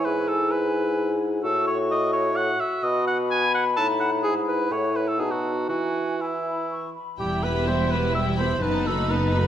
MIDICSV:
0, 0, Header, 1, 10, 480
1, 0, Start_track
1, 0, Key_signature, 4, "major"
1, 0, Tempo, 465839
1, 52, Time_signature, 3, 2, 24, 8
1, 4853, Tempo, 497925
1, 7253, Tempo, 475059
1, 9547, End_track
2, 0, Start_track
2, 0, Title_t, "Flute"
2, 0, Program_c, 0, 73
2, 0, Note_on_c, 0, 80, 47
2, 1437, Note_off_c, 0, 80, 0
2, 1486, Note_on_c, 0, 85, 52
2, 2615, Note_off_c, 0, 85, 0
2, 2925, Note_on_c, 0, 83, 56
2, 4857, Note_on_c, 0, 78, 38
2, 4872, Note_off_c, 0, 83, 0
2, 5317, Note_off_c, 0, 78, 0
2, 5323, Note_on_c, 0, 81, 34
2, 5800, Note_on_c, 0, 80, 33
2, 5815, Note_off_c, 0, 81, 0
2, 6244, Note_off_c, 0, 80, 0
2, 6293, Note_on_c, 0, 80, 37
2, 6351, Note_off_c, 0, 80, 0
2, 6536, Note_on_c, 0, 83, 34
2, 6766, Note_off_c, 0, 83, 0
2, 6771, Note_on_c, 0, 85, 40
2, 7001, Note_off_c, 0, 85, 0
2, 7007, Note_on_c, 0, 83, 33
2, 7244, Note_off_c, 0, 83, 0
2, 9547, End_track
3, 0, Start_track
3, 0, Title_t, "Violin section"
3, 0, Program_c, 1, 48
3, 7247, Note_on_c, 1, 79, 37
3, 7476, Note_off_c, 1, 79, 0
3, 7494, Note_on_c, 1, 83, 32
3, 7738, Note_off_c, 1, 83, 0
3, 7739, Note_on_c, 1, 79, 31
3, 7977, Note_on_c, 1, 83, 27
3, 7980, Note_off_c, 1, 79, 0
3, 8218, Note_off_c, 1, 83, 0
3, 8221, Note_on_c, 1, 79, 33
3, 8442, Note_off_c, 1, 79, 0
3, 8459, Note_on_c, 1, 83, 34
3, 8695, Note_on_c, 1, 81, 39
3, 8698, Note_off_c, 1, 83, 0
3, 8922, Note_off_c, 1, 81, 0
3, 8943, Note_on_c, 1, 83, 34
3, 9177, Note_on_c, 1, 81, 31
3, 9182, Note_off_c, 1, 83, 0
3, 9413, Note_on_c, 1, 83, 32
3, 9415, Note_off_c, 1, 81, 0
3, 9547, Note_off_c, 1, 83, 0
3, 9547, End_track
4, 0, Start_track
4, 0, Title_t, "Cor anglais"
4, 0, Program_c, 2, 69
4, 45, Note_on_c, 2, 71, 59
4, 288, Note_on_c, 2, 69, 63
4, 304, Note_off_c, 2, 71, 0
4, 527, Note_on_c, 2, 71, 61
4, 543, Note_off_c, 2, 69, 0
4, 1243, Note_off_c, 2, 71, 0
4, 1481, Note_on_c, 2, 69, 73
4, 1702, Note_off_c, 2, 69, 0
4, 1723, Note_on_c, 2, 73, 70
4, 1830, Note_off_c, 2, 73, 0
4, 1968, Note_on_c, 2, 75, 76
4, 2187, Note_off_c, 2, 75, 0
4, 2194, Note_on_c, 2, 73, 67
4, 2438, Note_on_c, 2, 78, 76
4, 2454, Note_off_c, 2, 73, 0
4, 2683, Note_on_c, 2, 76, 72
4, 2698, Note_off_c, 2, 78, 0
4, 2914, Note_on_c, 2, 75, 80
4, 2930, Note_off_c, 2, 76, 0
4, 3158, Note_off_c, 2, 75, 0
4, 3166, Note_on_c, 2, 78, 70
4, 3274, Note_off_c, 2, 78, 0
4, 3407, Note_on_c, 2, 80, 74
4, 3641, Note_off_c, 2, 80, 0
4, 3651, Note_on_c, 2, 78, 65
4, 3758, Note_off_c, 2, 78, 0
4, 3877, Note_on_c, 2, 81, 69
4, 3987, Note_off_c, 2, 81, 0
4, 4120, Note_on_c, 2, 78, 59
4, 4229, Note_off_c, 2, 78, 0
4, 4359, Note_on_c, 2, 68, 71
4, 4470, Note_off_c, 2, 68, 0
4, 4608, Note_on_c, 2, 71, 55
4, 4858, Note_on_c, 2, 73, 60
4, 4872, Note_off_c, 2, 71, 0
4, 5092, Note_on_c, 2, 71, 52
4, 5107, Note_off_c, 2, 73, 0
4, 5206, Note_on_c, 2, 69, 51
4, 5221, Note_off_c, 2, 71, 0
4, 5323, Note_on_c, 2, 68, 45
4, 5337, Note_off_c, 2, 69, 0
4, 5431, Note_on_c, 2, 66, 39
4, 5445, Note_off_c, 2, 68, 0
4, 5793, Note_off_c, 2, 66, 0
4, 5799, Note_on_c, 2, 66, 54
4, 6297, Note_on_c, 2, 64, 40
4, 6312, Note_off_c, 2, 66, 0
4, 7018, Note_off_c, 2, 64, 0
4, 7248, Note_on_c, 2, 67, 49
4, 7489, Note_on_c, 2, 71, 51
4, 7504, Note_off_c, 2, 67, 0
4, 7729, Note_on_c, 2, 72, 50
4, 7744, Note_off_c, 2, 71, 0
4, 7963, Note_on_c, 2, 71, 47
4, 7978, Note_off_c, 2, 72, 0
4, 8204, Note_off_c, 2, 71, 0
4, 8210, Note_on_c, 2, 76, 52
4, 8320, Note_off_c, 2, 76, 0
4, 8443, Note_on_c, 2, 72, 52
4, 8684, Note_on_c, 2, 71, 52
4, 8699, Note_off_c, 2, 72, 0
4, 8936, Note_on_c, 2, 69, 54
4, 8951, Note_off_c, 2, 71, 0
4, 9175, Note_on_c, 2, 71, 52
4, 9190, Note_off_c, 2, 69, 0
4, 9547, Note_off_c, 2, 71, 0
4, 9547, End_track
5, 0, Start_track
5, 0, Title_t, "Clarinet"
5, 0, Program_c, 3, 71
5, 0, Note_on_c, 3, 64, 41
5, 1437, Note_off_c, 3, 64, 0
5, 1474, Note_on_c, 3, 66, 50
5, 3554, Note_off_c, 3, 66, 0
5, 3883, Note_on_c, 3, 63, 43
5, 4367, Note_on_c, 3, 64, 43
5, 4382, Note_off_c, 3, 63, 0
5, 5307, Note_off_c, 3, 64, 0
5, 5312, Note_on_c, 3, 63, 35
5, 5798, Note_on_c, 3, 64, 31
5, 5812, Note_off_c, 3, 63, 0
5, 7014, Note_off_c, 3, 64, 0
5, 9547, End_track
6, 0, Start_track
6, 0, Title_t, "Violin section"
6, 0, Program_c, 4, 48
6, 7254, Note_on_c, 4, 64, 46
6, 8658, Note_off_c, 4, 64, 0
6, 8705, Note_on_c, 4, 63, 46
6, 9547, Note_off_c, 4, 63, 0
6, 9547, End_track
7, 0, Start_track
7, 0, Title_t, "Viola section"
7, 0, Program_c, 5, 48
7, 7251, Note_on_c, 5, 55, 34
7, 7253, Note_on_c, 5, 64, 37
7, 7479, Note_off_c, 5, 55, 0
7, 7480, Note_off_c, 5, 64, 0
7, 7499, Note_on_c, 5, 59, 32
7, 7499, Note_on_c, 5, 67, 32
7, 7736, Note_on_c, 5, 55, 30
7, 7737, Note_on_c, 5, 64, 32
7, 7741, Note_off_c, 5, 59, 0
7, 7741, Note_off_c, 5, 67, 0
7, 7979, Note_off_c, 5, 55, 0
7, 7979, Note_off_c, 5, 64, 0
7, 7983, Note_on_c, 5, 67, 32
7, 7985, Note_on_c, 5, 59, 32
7, 8221, Note_off_c, 5, 67, 0
7, 8221, Note_on_c, 5, 55, 35
7, 8222, Note_off_c, 5, 59, 0
7, 8222, Note_on_c, 5, 64, 35
7, 8442, Note_off_c, 5, 55, 0
7, 8443, Note_off_c, 5, 64, 0
7, 8457, Note_on_c, 5, 67, 33
7, 8460, Note_on_c, 5, 59, 30
7, 8685, Note_off_c, 5, 59, 0
7, 8697, Note_off_c, 5, 67, 0
7, 8697, Note_on_c, 5, 59, 33
7, 8698, Note_on_c, 5, 63, 36
7, 8922, Note_off_c, 5, 59, 0
7, 8923, Note_off_c, 5, 63, 0
7, 8940, Note_on_c, 5, 66, 31
7, 8941, Note_on_c, 5, 57, 30
7, 9180, Note_off_c, 5, 66, 0
7, 9180, Note_on_c, 5, 59, 33
7, 9180, Note_on_c, 5, 63, 32
7, 9181, Note_off_c, 5, 57, 0
7, 9411, Note_on_c, 5, 66, 35
7, 9414, Note_on_c, 5, 57, 35
7, 9417, Note_off_c, 5, 59, 0
7, 9417, Note_off_c, 5, 63, 0
7, 9547, Note_off_c, 5, 57, 0
7, 9547, Note_off_c, 5, 66, 0
7, 9547, End_track
8, 0, Start_track
8, 0, Title_t, "Bassoon"
8, 0, Program_c, 6, 70
8, 56, Note_on_c, 6, 44, 50
8, 1453, Note_off_c, 6, 44, 0
8, 1481, Note_on_c, 6, 45, 52
8, 2613, Note_off_c, 6, 45, 0
8, 2922, Note_on_c, 6, 47, 51
8, 3888, Note_on_c, 6, 45, 52
8, 3903, Note_off_c, 6, 47, 0
8, 4373, Note_on_c, 6, 44, 45
8, 4388, Note_off_c, 6, 45, 0
8, 4849, Note_off_c, 6, 44, 0
8, 4855, Note_on_c, 6, 45, 48
8, 5316, Note_on_c, 6, 47, 42
8, 5330, Note_off_c, 6, 45, 0
8, 5798, Note_on_c, 6, 52, 34
8, 5812, Note_off_c, 6, 47, 0
8, 7014, Note_off_c, 6, 52, 0
8, 9547, End_track
9, 0, Start_track
9, 0, Title_t, "Cello section"
9, 0, Program_c, 7, 48
9, 7252, Note_on_c, 7, 40, 39
9, 8656, Note_off_c, 7, 40, 0
9, 8698, Note_on_c, 7, 42, 42
9, 9547, Note_off_c, 7, 42, 0
9, 9547, End_track
10, 0, Start_track
10, 0, Title_t, "Double bass section"
10, 0, Program_c, 8, 48
10, 7253, Note_on_c, 8, 28, 41
10, 8657, Note_off_c, 8, 28, 0
10, 8697, Note_on_c, 8, 30, 42
10, 9547, Note_off_c, 8, 30, 0
10, 9547, End_track
0, 0, End_of_file